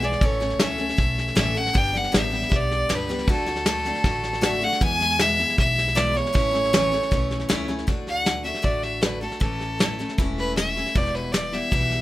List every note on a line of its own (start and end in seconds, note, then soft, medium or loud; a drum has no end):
0.00 0.16 B1 medium
0.00 0.22 B3 soft
0.00 0.22 G#4 medium
0.00 snare soft
0.04 0.21 E3 soft
0.04 0.22 G#3 soft
0.04 0.26 D5 medium
0.12 snare soft
0.21 0.52 A1 loud
0.21 0.41 A2 medium
0.21 0.41 E3 medium
0.21 0.41 A3 medium
0.21 0.40 C#4 medium
0.21 0.39 A4 medium
0.21 0.64 C#5 medium
0.21 kick loud
0.21 snare soft
0.40 0.59 A3 soft
0.40 0.59 C#4 medium
0.40 0.60 A4 medium
0.40 snare soft
0.50 snare soft
0.59 0.92 C#2 medium
0.59 0.79 A2 medium
0.59 0.79 E3 medium
0.59 0.79 A3 medium
0.59 0.78 C#4 medium
0.59 0.77 A4 medium
0.59 1.37 E5 medium
0.59 snare loud
0.59 hi-hat pedal medium
0.78 0.96 A3 soft
0.78 0.96 C#4 soft
0.78 0.97 A4 soft
0.78 snare soft
0.89 snare soft
0.97 1.31 B1 medium
0.97 1.34 E3 medium
0.97 1.35 A3 medium
0.97 1.35 C#4 medium
0.97 1.35 A4 medium
0.97 kick loud
0.97 snare soft
1.18 snare soft
1.28 snare soft
1.35 1.69 A1 medium
1.35 1.55 A2 medium
1.35 1.55 E3 medium
1.35 1.55 A3 medium
1.35 1.55 C#4 medium
1.35 1.53 A4 medium
1.35 1.59 E5 medium
1.35 snare loud
1.35 hi-hat pedal medium
1.55 1.74 A3 soft
1.55 1.74 C#4 soft
1.55 1.74 A4 medium
1.55 1.79 F#5 loud
1.55 snare soft
1.66 snare soft
1.73 2.06 G1 medium
1.73 1.93 G2 medium
1.73 1.93 D3 medium
1.73 1.94 G3 medium
1.73 1.94 B3 medium
1.73 1.92 D4 medium
1.73 1.91 G4 medium
1.73 kick loud
1.73 snare soft
1.77 1.99 G5 medium
1.93 2.11 G3 soft
1.93 2.11 B3 soft
1.93 2.12 D4 medium
1.93 2.12 G4 medium
1.93 snare soft
1.97 2.15 F#5 medium
2.04 snare soft
2.12 2.46 A1 medium
2.12 2.32 G2 medium
2.12 2.32 D3 medium
2.12 2.31 G3 medium
2.12 2.31 B3 medium
2.12 2.30 D4 medium
2.12 2.29 G4 medium
2.12 snare loud
2.12 hi-hat pedal medium
2.17 2.57 E5 medium
2.30 2.48 G3 soft
2.30 2.49 B3 soft
2.30 2.49 D4 medium
2.30 2.50 G4 medium
2.30 snare soft
2.42 snare soft
2.49 2.84 B1 medium
2.49 2.88 G3 medium
2.49 2.88 B3 medium
2.49 2.89 D4 medium
2.49 2.89 G4 medium
2.49 kick loud
2.49 snare soft
2.56 2.96 D5 loud
2.71 snare soft
2.89 3.23 C#2 medium
2.89 3.09 G2 medium
2.89 3.09 D3 medium
2.89 3.09 G3 medium
2.89 3.09 B3 medium
2.89 3.08 D4 medium
2.89 3.08 G4 medium
2.89 snare loud
2.89 hi-hat pedal medium
2.95 3.31 B4 medium
3.09 3.27 G3 soft
3.09 3.29 B3 soft
3.09 3.28 D4 medium
3.09 3.28 G4 medium
3.09 snare soft
3.19 snare soft
3.27 3.90 D2 medium
3.27 3.47 D3 medium
3.27 3.48 A3 medium
3.27 3.47 D4 medium
3.27 3.45 F#4 medium
3.27 kick loud
3.27 snare soft
3.32 4.47 A4 loud
3.46 3.66 A3 soft
3.46 3.66 D4 soft
3.46 3.66 F#4 medium
3.46 snare soft
3.56 snare soft
3.66 3.86 D3 medium
3.66 3.86 A3 medium
3.66 3.86 D4 medium
3.66 3.85 F#4 medium
3.66 snare loud
3.66 hi-hat pedal medium
3.85 4.04 A3 soft
3.85 4.04 D4 medium
3.85 4.04 F#4 medium
3.85 snare soft
3.95 snare soft
4.04 4.66 A1 medium
4.04 4.40 D3 medium
4.04 4.40 A3 medium
4.04 4.41 D4 medium
4.04 4.41 F#4 medium
4.04 kick loud
4.04 snare soft
4.23 snare soft
4.33 snare soft
4.41 4.61 D3 medium
4.41 4.62 A3 medium
4.41 4.61 D4 medium
4.41 4.60 F#4 loud
4.41 4.65 E5 loud
4.41 snare loud
4.41 hi-hat pedal medium
4.61 4.81 A3 soft
4.61 4.81 D4 medium
4.61 4.81 F#4 medium
4.61 4.74 F#5 loud
4.61 snare soft
4.72 4.84 F#5 medium
4.72 snare soft
4.81 5.00 E2 medium
4.81 5.43 E2 medium
4.81 5.00 B2 medium
4.81 5.01 E3 medium
4.81 5.00 G#3 medium
4.81 4.99 B3 medium
4.81 4.98 E4 medium
4.81 5.22 G#5 loud
4.81 kick loud
4.81 snare soft
5.00 5.20 E3 soft
5.00 5.20 G#3 medium
5.00 5.20 B3 medium
5.00 5.19 E4 medium
5.00 snare soft
5.10 snare soft
5.19 5.39 E2 medium
5.19 5.39 B2 medium
5.19 5.39 E3 medium
5.19 5.38 G#3 medium
5.19 5.38 B3 medium
5.19 5.37 E4 medium
5.19 5.58 E5 loud
5.19 snare loud
5.19 hi-hat pedal medium
5.39 5.55 E3 soft
5.39 5.56 G#3 soft
5.39 5.57 B3 soft
5.39 5.57 E4 medium
5.39 snare soft
5.49 snare soft
5.56 6.20 B1 medium
5.56 5.94 E3 medium
5.56 5.95 G#3 medium
5.56 5.95 B3 medium
5.56 5.95 E4 medium
5.56 5.97 E5 loud
5.56 kick loud
5.56 snare soft
5.78 snare soft
5.88 snare soft
5.95 6.15 E2 medium
5.95 6.15 B2 medium
5.95 6.14 E3 medium
5.95 6.14 G#3 medium
5.95 6.13 B3 loud
5.95 6.12 E4 loud
5.95 6.18 D5 loud
5.95 snare loud
5.95 hi-hat pedal medium
6.13 6.32 E3 soft
6.13 6.33 G#3 soft
6.13 6.34 B3 medium
6.13 6.34 E4 medium
6.13 7.69 C#5 loud
6.13 snare soft
6.26 snare soft
6.33 6.97 A1 medium
6.33 6.53 A2 medium
6.33 6.53 E3 medium
6.33 6.53 A3 medium
6.33 6.52 C#4 medium
6.33 6.50 E4 medium
6.33 kick loud
6.33 snare soft
6.51 6.72 A3 soft
6.51 6.72 C#4 soft
6.51 6.72 E4 medium
6.51 snare soft
6.64 snare soft
6.73 6.92 A2 medium
6.73 6.92 E3 medium
6.73 6.92 A3 medium
6.73 6.92 C#4 medium
6.73 6.91 E4 medium
6.73 snare loud
6.73 hi-hat pedal medium
6.92 7.11 A3 soft
6.92 7.11 C#4 medium
6.92 7.11 E4 medium
6.92 snare soft
7.03 snare soft
7.11 7.44 B1 medium
7.11 7.47 E3 medium
7.11 7.48 A3 medium
7.11 7.48 C#4 medium
7.11 7.49 E4 medium
7.11 kick loud
7.11 snare soft
7.31 snare soft
7.40 snare soft
7.48 7.83 C#2 medium
7.48 7.68 A2 medium
7.48 7.68 E3 medium
7.48 7.69 A3 medium
7.48 7.67 C#4 loud
7.48 7.67 E4 loud
7.48 snare loud
7.48 hi-hat pedal medium
7.68 7.86 A3 medium
7.68 7.88 C#4 medium
7.68 7.88 E4 medium
7.68 snare soft
7.78 snare soft
7.87 8.50 D2 medium
7.87 8.24 D3 medium
7.87 8.25 A3 medium
7.87 8.25 D4 medium
7.87 8.25 F#4 medium
7.87 kick loud
7.87 snare soft
8.07 8.44 F#5 medium
8.07 snare soft
8.25 8.45 D3 soft
8.25 8.45 A3 medium
8.25 8.44 D4 medium
8.25 8.43 F#4 medium
8.25 snare loud
8.25 hi-hat pedal medium
8.44 8.61 A3 soft
8.44 8.61 D4 soft
8.44 8.62 F#4 soft
8.44 8.65 E5 medium
8.44 snare soft
8.55 snare soft
8.62 9.26 A1 medium
8.62 9.00 D3 medium
8.62 9.01 A3 medium
8.62 9.01 D4 medium
8.62 9.02 F#4 medium
8.62 8.85 D5 medium
8.62 kick medium
8.62 snare soft
8.83 9.04 E5 medium
8.83 snare soft
9.01 9.21 D3 medium
9.01 9.22 A3 medium
9.01 9.21 D4 medium
9.01 9.20 F#4 medium
9.01 9.21 B4 medium
9.01 snare loud
9.01 hi-hat pedal medium
9.21 9.39 A3 soft
9.21 9.41 D4 soft
9.21 9.41 F#4 soft
9.21 9.40 A4 medium
9.21 snare soft
9.32 snare soft
9.40 10.03 A1 medium
9.40 9.79 A2 medium
9.40 9.79 E3 medium
9.40 9.79 A3 medium
9.40 9.80 C#4 medium
9.40 9.81 E4 medium
9.40 10.15 A4 medium
9.40 kick loud
9.40 snare soft
9.60 snare soft
9.79 9.99 E3 medium
9.79 9.99 A3 medium
9.79 9.98 C#4 medium
9.79 9.98 E4 medium
9.79 snare loud
9.79 hi-hat pedal medium
9.99 10.18 A3 soft
9.99 10.18 C#4 soft
9.99 10.18 E4 medium
9.99 snare soft
10.09 snare soft
10.18 10.80 E1 medium
10.18 10.56 A2 medium
10.18 10.56 E3 medium
10.18 10.57 A3 medium
10.18 10.57 C#4 medium
10.18 10.58 E4 medium
10.18 kick loud
10.18 snare soft
10.38 10.57 B4 loud
10.38 snare soft
10.56 10.76 E3 medium
10.56 10.76 A3 medium
10.56 10.76 C#4 medium
10.56 10.75 E4 medium
10.56 10.99 E5 medium
10.56 snare loud
10.56 hi-hat pedal medium
10.76 10.95 A3 soft
10.76 10.95 C#4 soft
10.76 10.95 E4 soft
10.76 snare soft
10.87 snare soft
10.95 11.57 E1 medium
10.95 11.33 E2 medium
10.95 11.33 B2 medium
10.95 11.32 E3 medium
10.95 11.32 G3 medium
10.95 11.33 B3 medium
10.95 11.34 E4 medium
10.95 11.16 D5 medium
10.95 kick loud
10.95 snare soft
11.06 snare soft
11.15 11.33 B4 medium
11.15 snare soft
11.32 11.52 E3 medium
11.32 11.52 G3 medium
11.32 11.52 B3 medium
11.32 11.51 E4 medium
11.32 11.55 D5 medium
11.32 snare loud
11.32 hi-hat pedal medium
11.52 11.71 E3 soft
11.52 11.72 G3 soft
11.52 11.72 B3 soft
11.52 11.71 E4 medium
11.52 12.02 E5 medium
11.52 snare soft
11.71 12.02 B1 medium
11.71 12.02 E2 medium
11.71 12.02 B2 medium
11.71 12.02 E3 medium
11.71 12.02 G3 medium
11.71 12.02 B3 medium
11.71 12.02 E4 medium
11.71 kick loud
11.71 snare soft
11.91 snare soft